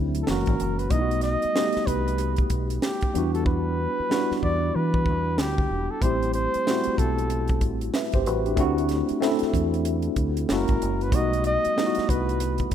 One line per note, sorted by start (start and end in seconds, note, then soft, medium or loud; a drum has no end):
0.00 0.23 D2 medium
0.00 0.29 D3 medium
0.00 0.29 F#3 medium
0.00 0.29 A3 medium
0.00 0.29 C4 medium
0.00 0.30 D4 medium
0.00 0.29 E4 medium
0.00 0.29 G4 soft
0.15 closed hi-hat medium
0.23 0.30 A4 medium
0.27 0.45 F#1 medium
0.27 0.81 E3 medium
0.27 0.82 G#3 medium
0.27 0.82 A#3 medium
0.27 0.83 C#4 medium
0.27 0.83 F#4 medium
0.27 0.80 A#4 medium
0.27 snare medium
0.46 0.58 G#1 medium
0.46 kick medium
0.46 closed hi-hat soft
0.60 0.87 F#1 medium
0.60 closed hi-hat medium
0.79 0.92 B4 medium
0.79 closed hi-hat soft
0.90 1.35 B1 loud
0.90 1.45 G3 medium
0.90 1.46 A3 medium
0.90 1.46 B3 medium
0.90 1.47 D#4 medium
0.90 1.22 D#5 loud
0.90 kick medium
0.90 closed hi-hat medium
0.95 1.01 E4 medium
1.01 1.50 F#4 medium
1.11 closed hi-hat soft
1.21 1.88 D#5 loud
1.21 snare soft
1.21 closed hi-hat soft
1.42 muted fingered electric bass stroke soft
1.42 closed hi-hat soft
1.54 2.58 G3 medium
1.54 2.59 A3 medium
1.54 2.59 B3 medium
1.54 2.59 D#4 medium
1.54 2.60 G4 medium
1.54 snare loud
1.73 snare soft
1.73 closed hi-hat soft
1.77 muted fingered electric bass stroke soft
1.87 2.42 C2 medium
1.87 2.51 B4 medium
1.87 kick medium
1.87 closed hi-hat medium
2.08 closed hi-hat soft
2.18 closed hi-hat medium
2.36 kick medium
2.36 closed hi-hat soft
2.50 2.78 B1 medium
2.50 kick medium
2.50 closed hi-hat medium
2.70 closed hi-hat medium
2.82 3.31 G4 medium
2.82 snare medium
3.01 muted fingered electric bass stroke soft
3.01 kick medium
3.01 closed hi-hat soft
3.14 3.86 E2 medium
3.14 3.94 G3 medium
3.14 3.94 B3 medium
3.14 3.95 D4 medium
3.14 3.95 E4 medium
3.14 3.96 F#4 medium
3.14 closed hi-hat medium
3.34 3.46 A4 medium
3.34 closed hi-hat soft
3.46 4.38 B4 medium
3.46 kick loud
4.00 muted fingered electric bass stroke soft
4.10 5.13 G3 medium
4.10 5.14 B3 medium
4.10 5.14 D4 medium
4.10 5.15 E4 medium
4.10 5.15 F#4 medium
4.10 snare medium
4.31 muted fingered electric bass stroke soft
4.31 snare soft
4.43 4.70 E2 medium
4.43 4.77 D5 medium
4.43 kick medium
4.75 5.08 E3 medium
4.75 5.41 B4 medium
4.94 kick medium
5.06 5.39 E2 medium
5.06 kick medium
5.38 5.66 D2 medium
5.38 5.92 G4 medium
5.38 snare loud
5.58 kick medium
5.71 5.87 E1 medium
5.91 6.04 A4 medium
6.02 6.46 A1 medium
6.02 6.56 G3 medium
6.02 6.56 A3 medium
6.02 6.57 C4 medium
6.02 6.57 E4 medium
6.02 6.33 C5 medium
6.02 kick medium
6.02 closed hi-hat medium
6.06 6.58 G4 medium
6.23 closed hi-hat soft
6.33 7.00 C5 medium
6.33 closed hi-hat soft
6.54 muted fingered electric bass stroke soft
6.54 closed hi-hat soft
6.66 7.70 G3 medium
6.66 7.69 A3 medium
6.66 7.70 C4 medium
6.66 7.71 E4 medium
6.66 7.71 F#4 medium
6.66 snare medium
6.84 muted fingered electric bass stroke soft
6.84 closed hi-hat soft
6.98 7.62 B1 medium
6.98 7.62 A4 medium
6.98 kick medium
6.98 closed hi-hat medium
7.18 closed hi-hat soft
7.30 closed hi-hat medium
7.48 kick medium
7.48 closed hi-hat soft
7.61 7.89 A1 medium
7.61 kick medium
7.61 closed hi-hat medium
7.81 closed hi-hat soft
7.94 8.14 B4 soft
7.94 8.13 E5 medium
7.94 snare medium
8.12 8.27 G1 medium
8.12 8.26 G4 medium
8.12 8.25 C5 medium
8.12 kick medium
8.12 closed hi-hat soft
8.26 8.59 A1 medium
8.26 8.45 F#4 medium
8.26 8.45 B4 medium
8.26 closed hi-hat medium
8.46 8.57 D4 soft
8.46 8.76 G4 medium
8.46 closed hi-hat soft
8.56 9.01 D2 loud
8.56 9.11 A3 medium
8.56 9.11 C4 medium
8.56 9.12 D4 medium
8.56 9.12 E4 medium
8.56 9.13 F#4 medium
8.56 kick medium
8.56 closed hi-hat medium
8.78 closed hi-hat soft
8.89 snare soft
8.89 closed hi-hat medium
9.09 muted fingered electric bass stroke soft
9.09 closed hi-hat soft
9.21 10.24 A3 medium
9.21 10.24 C4 medium
9.21 10.25 D4 medium
9.21 10.25 E4 medium
9.21 10.26 A4 medium
9.21 snare loud
9.39 muted fingered electric bass stroke soft
9.39 snare soft
9.39 closed hi-hat soft
9.54 10.08 E2 medium
9.54 kick medium
9.54 closed hi-hat medium
9.74 closed hi-hat soft
9.85 closed hi-hat medium
10.02 closed hi-hat soft
10.16 10.44 D2 medium
10.16 kick medium
10.16 closed hi-hat medium
10.37 closed hi-hat medium
10.49 10.66 F#1 medium
10.49 11.03 G#3 medium
10.49 11.03 A#3 medium
10.49 11.04 C#4 medium
10.49 11.04 E4 medium
10.49 11.05 F#4 medium
10.49 11.04 A#4 medium
10.49 snare loud
10.68 10.79 G#1 medium
10.68 kick medium
10.68 closed hi-hat soft
10.82 11.13 F#1 medium
10.82 closed hi-hat medium
11.01 11.16 B4 medium
11.01 closed hi-hat soft
11.12 11.56 B1 loud
11.12 11.66 G3 medium
11.12 11.67 A3 medium
11.12 11.67 B3 medium
11.12 11.68 D#4 medium
11.12 11.68 F#4 medium
11.12 11.46 D#5 loud
11.12 kick loud
11.12 closed hi-hat medium
11.33 closed hi-hat soft
11.44 12.11 D#5 medium
11.44 closed hi-hat medium
11.65 muted fingered electric bass stroke soft
11.65 closed hi-hat soft
11.76 12.75 G3 medium
11.76 12.75 A3 medium
11.76 12.75 B3 medium
11.76 12.75 D#4 medium
11.76 11.86 E4 medium
11.76 snare medium
11.86 12.75 F#4 medium
11.95 muted fingered electric bass stroke soft
11.95 snare soft
11.95 closed hi-hat soft
12.09 12.63 C2 medium
12.09 12.73 B4 medium
12.09 kick medium
12.09 closed hi-hat medium
12.29 closed hi-hat soft
12.40 closed hi-hat medium
12.58 kick medium
12.58 closed hi-hat soft
12.71 closed hi-hat medium